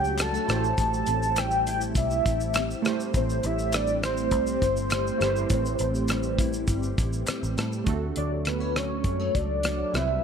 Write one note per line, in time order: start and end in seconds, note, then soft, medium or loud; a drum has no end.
0.00 0.37 C#2 medium
0.00 0.46 F#3 medium
0.00 0.55 F#3 medium
0.00 0.18 A3 medium
0.00 0.43 A3 medium
0.00 0.46 A3 medium
0.00 0.55 C#4 medium
0.00 0.44 D4 medium
0.00 0.45 F#4 medium
0.00 0.46 F#4 medium
0.00 0.45 C#5 medium
0.00 0.46 C#5 medium
0.00 0.23 G5 loud
0.04 shaker soft
0.18 0.34 G3 medium
0.18 0.79 A5 loud
0.18 cross-stick loud
0.18 clap medium
0.18 closed hi-hat medium
0.18 shaker medium
0.34 0.54 A3 medium
0.34 shaker medium
0.46 0.72 A1 loud
0.46 0.77 A2 medium
0.46 2.80 A3 medium
0.46 7.83 A3 medium
0.46 7.83 C4 medium
0.46 2.80 E4 medium
0.46 7.83 G4 medium
0.46 2.81 G4 medium
0.46 cross-stick medium
0.46 closed hi-hat soft
0.46 shaker soft
0.51 2.82 C5 medium
0.64 shaker soft
0.78 1.02 A1 loud
0.78 3.13 A2 medium
0.78 1.40 A5 loud
0.78 kick loud
0.78 closed hi-hat medium
0.78 shaker medium
0.94 shaker medium
1.07 1.92 A1 loud
1.07 2.54 C4 medium
1.07 closed hi-hat medium
1.07 shaker medium
1.23 shaker soft
1.36 1.96 G3 medium
1.36 1.67 G5 loud
1.36 cross-stick medium
1.36 clap medium
1.36 closed hi-hat medium
1.36 shaker medium
1.51 shaker medium
1.67 2.25 E4 medium
1.67 1.81 G5 medium
1.67 closed hi-hat medium
1.67 shaker medium
1.81 shaker medium
1.95 2.19 B1 medium
1.95 2.84 G3 medium
1.95 2.81 E5 medium
1.95 kick medium
1.95 closed hi-hat medium
1.95 shaker medium
2.11 shaker medium
2.26 2.73 A1 medium
2.26 4.01 E4 medium
2.26 kick medium
2.26 closed hi-hat medium
2.26 shaker medium
2.40 shaker soft
2.54 3.43 C4 medium
2.54 cross-stick loud
2.54 clap medium
2.54 closed hi-hat medium
2.54 shaker medium
2.71 shaker medium
2.82 3.72 G3 medium
2.82 5.16 A3 medium
2.82 5.17 E4 medium
2.82 5.17 G4 medium
2.82 cross-stick medium
2.82 closed hi-hat soft
2.82 shaker soft
2.87 5.18 C5 medium
3.00 shaker soft
3.14 3.38 A1 loud
3.14 5.49 A2 medium
3.14 3.47 C5 loud
3.14 kick loud
3.14 closed hi-hat medium
3.14 shaker medium
3.30 shaker medium
3.43 4.32 A1 loud
3.43 4.90 C4 medium
3.43 3.76 E5 loud
3.43 closed hi-hat medium
3.43 shaker medium
3.59 shaker soft
3.72 4.31 G3 medium
3.72 4.04 D5 loud
3.72 cross-stick medium
3.72 clap medium
3.72 closed hi-hat medium
3.72 shaker medium
3.87 shaker medium
4.02 4.61 E4 medium
4.02 7.25 C5 medium
4.02 cross-stick loud
4.02 closed hi-hat medium
4.02 shaker medium
4.17 shaker medium
4.31 4.56 C2 medium
4.31 5.19 G3 medium
4.31 kick medium
4.31 closed hi-hat medium
4.31 shaker medium
4.47 shaker medium
4.62 5.09 G1 medium
4.62 6.38 E4 medium
4.62 kick loud
4.62 closed hi-hat medium
4.62 shaker medium
4.77 shaker soft
4.90 5.79 C4 medium
4.90 cross-stick loud
4.90 clap medium
4.90 closed hi-hat medium
4.90 shaker medium
5.07 shaker medium
5.18 5.45 G1 medium
5.18 6.09 G3 medium
5.18 7.52 A3 medium
5.18 7.53 E4 medium
5.18 7.54 G4 medium
5.18 closed hi-hat soft
5.18 shaker soft
5.22 5.28 B4 medium
5.22 cross-stick medium
5.30 7.58 C5 medium
5.36 shaker soft
5.50 5.74 A1 loud
5.50 7.87 A2 medium
5.50 kick loud
5.50 closed hi-hat medium
5.50 shaker medium
5.66 shaker medium
5.79 6.65 A1 loud
5.79 7.26 C4 medium
5.79 closed hi-hat medium
5.79 shaker medium
5.95 shaker soft
6.08 6.68 G3 medium
6.08 cross-stick medium
6.08 clap medium
6.08 closed hi-hat medium
6.08 shaker medium
6.23 shaker medium
6.39 6.97 E4 medium
6.39 kick loud
6.39 closed hi-hat medium
6.39 shaker medium
6.53 shaker medium
6.68 6.92 G1 medium
6.68 7.56 G3 medium
6.68 kick medium
6.68 closed hi-hat medium
6.68 shaker medium
6.83 shaker soft
6.98 7.22 A1 medium
6.98 7.93 E4 medium
6.98 kick loud
6.98 closed hi-hat medium
6.98 shaker medium
7.13 shaker soft
7.27 7.93 C4 medium
7.27 cross-stick medium
7.27 clap medium
7.27 closed hi-hat medium
7.27 shaker medium
7.43 7.55 A1 medium
7.43 shaker medium
7.57 7.81 A2 loud
7.57 7.93 G3 medium
7.57 cross-stick medium
7.57 closed hi-hat medium
7.57 shaker soft
7.73 shaker soft
7.84 8.10 D2 medium
7.84 9.92 F#3 medium
7.84 9.89 A3 medium
7.84 9.92 A3 medium
7.84 9.89 D4 medium
7.84 9.92 F#4 medium
7.84 9.90 F#4 medium
7.84 kick medium
7.84 closed hi-hat medium
7.89 9.91 A4 medium
8.16 9.01 D2 loud
8.16 8.74 F#3 soft
8.16 8.30 D5 medium
8.16 closed hi-hat medium
8.45 8.60 B3 medium
8.45 8.78 B4 medium
8.45 cross-stick medium
8.45 closed hi-hat medium
8.60 9.34 C#4 soft
8.76 9.63 F#3 medium
8.76 9.36 C#5 medium
8.76 cross-stick medium
8.76 closed hi-hat medium
9.04 9.28 F#2 medium
9.04 9.19 G3 medium
9.04 kick medium
9.04 closed hi-hat medium
9.19 10.00 A3 soft
9.34 9.82 C#2 medium
9.34 9.96 D5 loud
9.34 kick medium
9.34 closed hi-hat medium
9.63 10.00 F#3 medium
9.63 cross-stick medium
9.63 closed hi-hat medium
9.92 10.18 C2 medium
9.92 10.22 C3 medium
9.92 10.24 G3 medium
9.92 10.24 C4 medium
9.92 10.24 E4 medium
9.92 10.24 E5 loud
9.92 cross-stick medium
9.92 closed hi-hat soft
9.97 10.24 B4 medium